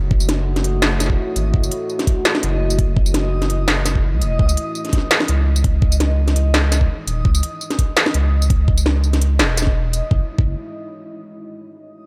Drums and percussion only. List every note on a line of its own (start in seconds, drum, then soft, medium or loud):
0.11 kick loud
0.20 tambourine medium
0.29 snare medium
0.29 closed hi-hat medium
0.56 snare soft
0.56 closed hi-hat soft
0.64 closed hi-hat medium
0.82 snare loud
0.82 snare medium
1.00 snare soft
1.00 closed hi-hat medium
1.00 tambourine medium
1.03 snare soft
1.06 kick medium
1.06 snare soft
1.36 closed hi-hat medium
1.36 tambourine soft
1.54 kick loud
1.64 tambourine medium
1.71 closed hi-hat medium
1.89 tambourine soft
1.99 snare soft
1.99 closed hi-hat soft
2.07 kick medium
2.07 closed hi-hat medium
2.25 snare loud
2.35 snare medium
2.43 closed hi-hat medium
2.70 tambourine medium
2.79 kick loud
2.79 closed hi-hat medium
2.97 kick loud
3.06 tambourine medium
3.14 snare medium
3.14 closed hi-hat medium
3.42 snare soft
3.42 closed hi-hat soft
3.50 closed hi-hat medium
3.68 snare loud
3.68 snare medium
3.86 snare soft
3.86 closed hi-hat medium
3.86 tambourine medium
3.95 kick medium
4.22 closed hi-hat medium
4.22 tambourine soft
4.39 kick loud
4.49 tambourine medium
4.57 closed hi-hat medium
4.75 tambourine soft
4.85 snare soft
4.85 closed hi-hat soft
4.89 snare soft
4.93 kick medium
4.93 snare soft
4.93 closed hi-hat medium
4.98 snare soft
5.11 snare loud
5.20 snare medium
5.28 closed hi-hat medium
5.56 tambourine medium
5.64 kick loud
5.64 closed hi-hat medium
5.82 kick loud
5.92 tambourine medium
6.00 snare medium
6.00 closed hi-hat medium
6.28 snare soft
6.28 closed hi-hat soft
6.36 closed hi-hat medium
6.54 snare loud
6.54 snare medium
6.72 snare soft
6.72 closed hi-hat medium
6.72 tambourine medium
6.81 kick medium
7.07 closed hi-hat medium
7.07 tambourine soft
7.25 kick loud
7.35 tambourine medium
7.43 closed hi-hat medium
7.61 tambourine soft
7.70 snare soft
7.70 closed hi-hat soft
7.79 kick medium
7.79 closed hi-hat medium
7.97 snare loud
8.06 snare medium
8.14 closed hi-hat medium
8.42 tambourine medium
8.50 kick loud
8.50 closed hi-hat medium
8.68 kick loud
8.78 tambourine medium
8.86 snare medium
9.04 tambourine soft
9.13 snare soft
9.13 closed hi-hat soft
9.21 closed hi-hat medium
9.39 snare loud
9.39 snare medium
9.57 snare soft
9.57 closed hi-hat medium
9.57 tambourine medium
9.62 snare soft
9.67 kick medium
9.93 closed hi-hat medium
9.93 tambourine soft
10.11 kick loud
10.38 kick loud